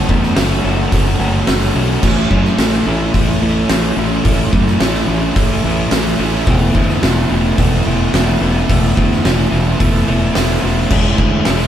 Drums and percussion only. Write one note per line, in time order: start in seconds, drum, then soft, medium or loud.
0.09 kick loud
0.23 snare soft
0.37 snare loud
0.37 open hi-hat medium
0.92 kick loud
0.92 open hi-hat medium
1.47 snare loud
1.47 open hi-hat medium
2.03 kick loud
2.03 crash loud
2.31 kick medium
2.45 snare soft
2.59 snare loud
2.59 open hi-hat medium
2.73 snare soft
3.14 kick loud
3.14 open hi-hat medium
3.69 snare loud
3.69 open hi-hat medium
4.25 kick loud
4.25 open hi-hat medium
4.53 kick loud
4.67 snare soft
4.80 snare loud
4.80 open hi-hat medium
4.94 snare soft
5.36 kick loud
5.36 open hi-hat medium
5.91 snare loud
5.91 open hi-hat medium
6.47 kick loud
6.47 open hi-hat medium
6.75 kick loud
6.89 snare soft
7.03 snare loud
7.03 open hi-hat medium
7.58 kick loud
7.58 open hi-hat medium
8.14 snare loud
8.14 open hi-hat medium
8.70 kick loud
8.70 open hi-hat medium
8.97 kick loud
9.12 snare soft
9.25 snare loud
9.25 open hi-hat medium
9.80 kick loud
9.80 open hi-hat medium
10.35 snare loud
10.35 open hi-hat medium
10.90 kick loud
10.90 crash loud
11.18 kick loud
11.45 snare loud
11.45 open hi-hat medium
11.59 snare soft